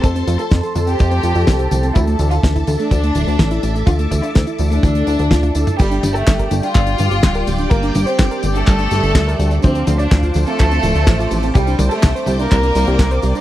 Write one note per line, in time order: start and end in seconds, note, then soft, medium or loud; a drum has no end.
0.00 0.24 F2 medium
0.00 0.09 F3 medium
0.00 5.75 A4 medium
0.00 0.30 A4 loud
0.00 1.91 C5 medium
0.00 5.75 A5 medium
0.00 1.91 C6 medium
0.00 kick loud
0.00 closed hi-hat medium
0.00 tambourine soft
0.15 0.25 C4 medium
0.15 closed hi-hat medium
0.15 tambourine soft
0.27 0.37 F2 loud
0.27 0.37 F3 medium
0.27 closed hi-hat loud
0.27 tambourine medium
0.39 0.45 F4 medium
0.39 0.74 A4 medium
0.39 closed hi-hat medium
0.39 tambourine soft
0.51 0.62 F2 loud
0.51 0.57 F3 medium
0.51 kick loud
0.51 snare loud
0.51 closed hi-hat medium
0.51 tambourine soft
0.63 0.73 A4 loud
0.63 closed hi-hat medium
0.63 tambourine soft
0.75 0.96 F2 loud
0.75 0.85 F3 medium
0.75 closed hi-hat medium
0.75 high tom medium
0.75 tambourine medium
0.87 0.99 C4 medium
0.87 1.86 G4 loud
0.87 closed hi-hat medium
0.87 tambourine soft
0.99 1.20 F2 loud
0.99 1.05 F3 medium
0.99 kick loud
0.99 closed hi-hat medium
0.99 tambourine soft
1.11 1.21 C4 medium
1.11 closed hi-hat medium
1.11 tambourine soft
1.23 1.34 F2 medium
1.23 1.33 F3 medium
1.23 closed hi-hat medium
1.23 tambourine medium
1.35 1.45 F2 loud
1.35 1.41 F4 medium
1.35 closed hi-hat medium
1.35 tambourine soft
1.47 1.68 C2 loud
1.47 1.53 F3 medium
1.47 kick loud
1.47 snare loud
1.47 closed hi-hat medium
1.47 tambourine soft
1.59 1.69 A4 loud
1.59 closed hi-hat medium
1.59 tambourine soft
1.71 1.92 C2 medium
1.71 1.81 F3 medium
1.71 closed hi-hat loud
1.71 high tom medium
1.71 tambourine medium
1.83 1.95 C4 medium
1.83 closed hi-hat medium
1.83 tambourine soft
1.95 2.16 D2 loud
1.95 2.01 E3 medium
1.95 2.22 E4 loud
1.95 5.76 E5 medium
1.95 5.76 D6 loud
1.95 kick loud
1.95 closed hi-hat medium
1.95 tambourine soft
2.07 2.17 A3 medium
2.07 closed hi-hat medium
2.07 tambourine soft
2.19 2.39 D2 loud
2.19 2.29 E3 medium
2.19 closed hi-hat loud
2.19 tambourine medium
2.31 2.37 D4 medium
2.31 2.66 F4 loud
2.31 closed hi-hat medium
2.31 tambourine soft
2.43 2.64 D2 medium
2.43 2.49 E3 medium
2.43 kick loud
2.43 snare loud
2.43 closed hi-hat medium
2.43 tambourine soft
2.55 2.65 E4 loud
2.55 kick medium
2.55 closed hi-hat medium
2.55 tambourine soft
2.67 2.77 D2 loud
2.67 2.77 E3 medium
2.67 closed hi-hat medium
2.67 high tom medium
2.67 tambourine medium
2.79 2.91 A3 medium
2.79 3.78 D4 loud
2.79 closed hi-hat medium
2.79 tambourine soft
2.91 3.11 D2 medium
2.91 2.97 E3 medium
2.91 kick loud
2.91 closed hi-hat medium
2.91 tambourine soft
3.03 3.13 A3 medium
3.03 closed hi-hat medium
3.03 tambourine soft
3.15 3.25 D1 loud
3.15 3.25 E3 medium
3.15 closed hi-hat loud
3.15 tambourine medium
3.27 3.37 D2 medium
3.27 3.33 D4 medium
3.27 closed hi-hat medium
3.27 tambourine soft
3.39 3.59 A1 medium
3.39 3.45 E3 medium
3.39 kick loud
3.39 snare loud
3.39 closed hi-hat medium
3.39 high tom medium
3.39 tambourine soft
3.51 3.61 E4 loud
3.51 closed hi-hat medium
3.51 tambourine soft
3.63 3.83 A1 medium
3.63 3.73 E3 medium
3.63 closed hi-hat loud
3.63 tambourine medium
3.75 3.87 A3 medium
3.75 closed hi-hat medium
3.75 tambourine soft
3.87 4.07 D2 medium
3.87 3.93 E3 medium
3.87 4.14 F4 loud
3.87 kick loud
3.87 closed hi-hat medium
3.87 tambourine soft
3.99 4.09 A3 medium
3.99 closed hi-hat medium
3.99 tambourine soft
4.11 4.21 D2 loud
4.11 4.21 E3 medium
4.11 kick medium
4.11 closed hi-hat loud
4.11 tambourine medium
4.23 4.29 D4 medium
4.23 4.58 E4 loud
4.23 closed hi-hat medium
4.23 tambourine soft
4.35 4.46 D2 loud
4.35 4.41 E3 medium
4.35 kick loud
4.35 snare loud
4.35 closed hi-hat medium
4.35 tambourine soft
4.47 4.57 E4 loud
4.47 closed hi-hat medium
4.59 4.79 D2 loud
4.59 4.69 E3 medium
4.59 closed hi-hat medium
4.59 tambourine medium
4.71 4.83 A3 medium
4.71 5.70 D4 loud
4.71 closed hi-hat medium
4.71 tambourine soft
4.83 5.03 D2 loud
4.83 4.89 E3 medium
4.83 kick loud
4.83 closed hi-hat medium
4.83 tambourine soft
4.95 5.05 A3 medium
4.95 closed hi-hat medium
5.07 5.17 D2 medium
5.07 5.13 E4 medium
5.07 closed hi-hat medium
5.07 tambourine medium
5.19 5.29 D2 loud
5.19 5.25 A3 medium
5.19 closed hi-hat medium
5.19 tambourine soft
5.31 5.51 D2 loud
5.31 5.41 F4 loud
5.31 kick loud
5.31 snare loud
5.31 closed hi-hat medium
5.31 high tom medium
5.31 tambourine soft
5.43 5.55 F4 medium
5.43 closed hi-hat medium
5.43 high tom medium
5.43 tambourine soft
5.55 5.65 D2 medium
5.55 5.66 E4 loud
5.55 closed hi-hat loud
5.55 tambourine medium
5.67 5.79 E4 medium
5.67 closed hi-hat medium
5.67 mid tom medium
5.67 tambourine soft
5.79 6.00 G1 loud
5.79 5.85 G3 medium
5.79 6.05 G3 medium
5.79 6.05 G4 loud
5.79 9.59 G4 medium
5.79 9.59 D5 medium
5.79 9.59 G5 medium
5.79 9.59 D6 medium
5.79 kick loud
5.79 closed hi-hat medium
5.79 tambourine soft
5.79 crash loud
5.91 6.01 D4 medium
5.91 closed hi-hat medium
5.91 tambourine soft
6.03 6.23 G1 loud
6.03 6.13 G3 medium
6.03 closed hi-hat loud
6.03 high tom medium
6.03 tambourine medium
6.15 6.50 A3 medium
6.15 6.21 G4 medium
6.15 6.50 A4 medium
6.15 closed hi-hat medium
6.15 tambourine soft
6.27 6.48 G1 medium
6.27 6.33 G3 medium
6.27 kick loud
6.27 snare loud
6.27 clap loud
6.27 closed hi-hat medium
6.27 tambourine soft
6.39 6.49 A#4 loud
6.39 kick medium
6.39 closed hi-hat medium
6.39 tambourine soft
6.51 6.61 G1 loud
6.51 6.61 G3 medium
6.51 closed hi-hat loud
6.51 high tom medium
6.51 tambourine medium
6.63 6.75 D4 medium
6.63 7.62 F4 loud
6.63 closed hi-hat medium
6.63 tambourine soft
6.74 6.95 G1 medium
6.74 6.81 G3 medium
6.74 kick loud
6.74 clap medium
6.74 closed hi-hat medium
6.74 tambourine soft
6.87 6.97 D4 medium
6.87 closed hi-hat medium
6.87 tambourine soft
6.98 7.09 G2 loud
6.98 7.09 G3 medium
6.98 closed hi-hat medium
6.98 high tom medium
6.98 tambourine medium
7.11 7.21 G1 medium
7.11 7.17 G4 medium
7.11 closed hi-hat medium
7.11 tambourine soft
7.23 7.44 D1 medium
7.23 7.29 G3 medium
7.23 kick loud
7.23 snare loud
7.23 clap loud
7.23 closed hi-hat medium
7.23 tambourine soft
7.35 7.45 A#4 loud
7.35 closed hi-hat medium
7.35 tambourine soft
7.47 7.68 D1 medium
7.47 7.57 G3 medium
7.47 closed hi-hat loud
7.47 tambourine medium
7.58 7.71 D4 medium
7.58 closed hi-hat medium
7.58 tambourine soft
7.70 7.91 G1 medium
7.70 7.77 G3 medium
7.70 7.98 A#3 medium
7.70 7.98 A#4 loud
7.70 kick loud
7.70 closed hi-hat medium
7.70 tambourine soft
7.83 7.93 D4 medium
7.83 closed hi-hat medium
7.83 tambourine soft
7.95 8.05 G1 loud
7.95 8.05 G3 medium
7.95 closed hi-hat medium
7.95 high tom medium
7.95 tambourine medium
8.07 8.42 C4 medium
8.07 8.13 G4 medium
8.07 8.42 C5 loud
8.07 closed hi-hat medium
8.07 tambourine soft
8.19 8.29 G1 loud
8.19 8.25 G3 medium
8.19 kick loud
8.19 snare loud
8.19 clap medium
8.19 closed hi-hat medium
8.19 tambourine soft
8.31 8.41 A#4 loud
8.31 closed hi-hat medium
8.31 tambourine soft
8.43 8.64 G1 loud
8.43 8.53 G3 medium
8.43 closed hi-hat loud
8.43 high tom medium
8.43 tambourine medium
8.55 9.54 A3 medium
8.55 8.67 D4 medium
8.55 9.54 A4 loud
8.55 closed hi-hat medium
8.55 tambourine soft
8.67 8.88 G1 loud
8.67 8.73 G3 medium
8.67 kick loud
8.67 clap medium
8.67 closed hi-hat medium
8.67 tambourine soft
8.79 8.89 D4 medium
8.79 closed hi-hat medium
8.79 tambourine soft
8.91 9.01 G1 medium
8.91 9.01 G3 medium
8.91 snare soft
8.91 closed hi-hat loud
8.91 tambourine medium
9.03 9.13 G1 medium
9.03 9.09 G4 medium
9.03 closed hi-hat medium
9.03 tambourine soft
9.15 9.35 D2 medium
9.15 9.21 G3 medium
9.15 kick loud
9.15 snare loud
9.15 clap loud
9.15 closed hi-hat medium
9.15 tambourine soft
9.27 9.37 A#4 loud
9.27 closed hi-hat medium
9.27 tambourine soft
9.39 9.59 D2 loud
9.39 9.49 G3 medium
9.39 closed hi-hat loud
9.39 tambourine medium
9.51 9.63 D4 medium
9.51 closed hi-hat medium
9.51 tambourine soft
9.62 9.84 D2 loud
9.62 9.69 F3 medium
9.62 9.90 C4 medium
9.62 13.41 C5 medium
9.62 9.90 C5 loud
9.62 11.53 F5 medium
9.62 11.53 A5 medium
9.62 13.41 D6 medium
9.62 kick loud
9.62 closed hi-hat medium
9.62 tambourine soft
9.75 9.85 C4 medium
9.75 closed hi-hat medium
9.75 tambourine soft
9.87 10.07 D2 loud
9.87 9.97 F3 medium
9.87 closed hi-hat loud
9.87 high tom medium
9.87 tambourine medium
9.99 10.34 D4 medium
9.99 10.05 D4 medium
9.99 10.34 D5 medium
9.99 closed hi-hat medium
9.99 tambourine soft
10.12 10.32 D2 medium
10.12 10.17 F3 medium
10.12 kick loud
10.12 snare loud
10.12 clap medium
10.12 closed hi-hat medium
10.12 tambourine soft
10.23 10.33 F4 loud
10.23 kick medium
10.23 closed hi-hat medium
10.23 tambourine soft
10.34 10.45 D2 loud
10.34 10.45 F3 medium
10.34 closed hi-hat medium
10.34 high tom medium
10.34 tambourine medium
10.47 11.46 A3 medium
10.47 10.59 C4 medium
10.47 11.46 A4 loud
10.47 closed hi-hat medium
10.47 tambourine soft
10.59 10.80 D2 loud
10.59 10.65 F3 medium
10.59 kick loud
10.59 clap medium
10.59 closed hi-hat medium
10.59 tambourine soft
10.71 10.81 C4 medium
10.71 closed hi-hat medium
10.71 tambourine soft
10.83 10.93 D1 loud
10.83 10.93 F3 medium
10.83 closed hi-hat medium
10.83 high tom medium
10.83 tambourine medium
10.95 11.05 D2 medium
10.95 11.01 D4 medium
10.95 closed hi-hat medium
10.95 tambourine soft
11.07 11.27 A1 medium
11.07 11.13 F3 medium
11.07 kick loud
11.07 snare loud
11.07 clap medium
11.07 closed hi-hat medium
11.07 tambourine soft
11.19 11.29 F4 loud
11.19 closed hi-hat medium
11.19 tambourine soft
11.31 11.51 A1 medium
11.31 11.41 F3 medium
11.31 closed hi-hat loud
11.31 tambourine medium
11.43 11.55 C4 medium
11.43 closed hi-hat medium
11.43 tambourine soft
11.55 11.75 C2 medium
11.55 11.61 G3 medium
11.55 11.82 G3 medium
11.55 11.82 G4 loud
11.55 13.41 D5 medium
11.55 13.41 G5 medium
11.55 kick loud
11.55 closed hi-hat medium
11.55 tambourine soft
11.67 11.77 D4 medium
11.67 closed hi-hat medium
11.67 tambourine soft
11.79 11.89 C2 loud
11.79 11.89 G3 medium
11.79 closed hi-hat medium
11.79 high tom medium
11.79 tambourine medium
11.91 12.26 A3 medium
11.91 11.97 G4 medium
11.91 12.26 A4 medium
11.91 closed hi-hat medium
11.91 tambourine soft
12.03 12.14 C2 loud
12.03 12.09 G3 medium
12.03 kick loud
12.03 snare loud
12.03 clap medium
12.03 closed hi-hat medium
12.03 tambourine soft
12.15 12.25 C5 loud
12.15 closed hi-hat medium
12.15 tambourine soft
12.26 12.47 C2 loud
12.26 12.37 G3 medium
12.26 closed hi-hat medium
12.26 high tom medium
12.26 tambourine medium
12.39 13.38 A#3 medium
12.39 12.51 D4 medium
12.39 13.38 A#4 loud
12.39 closed hi-hat medium
12.39 tambourine soft
12.51 12.72 C2 loud
12.51 12.57 G3 medium
12.51 kick loud
12.51 clap medium
12.51 closed hi-hat medium
12.51 tambourine soft
12.63 12.73 D4 medium
12.63 closed hi-hat medium
12.63 tambourine soft
12.75 12.85 C2 medium
12.75 12.85 G3 medium
12.75 snare soft
12.75 closed hi-hat loud
12.75 tambourine medium
12.87 12.97 C2 loud
12.87 12.93 G4 medium
12.87 closed hi-hat medium
12.87 tambourine soft
12.99 13.19 C2 medium
12.99 13.05 G3 medium
12.99 kick loud
12.99 snare loud
12.99 clap medium
12.99 closed hi-hat medium
12.99 tambourine soft
13.11 13.21 C5 loud
13.11 closed hi-hat medium
13.11 tambourine soft
13.22 13.33 C2 medium
13.22 13.33 G3 medium
13.22 closed hi-hat medium
13.22 tambourine medium
13.35 13.41 D4 medium
13.35 closed hi-hat medium
13.35 tambourine soft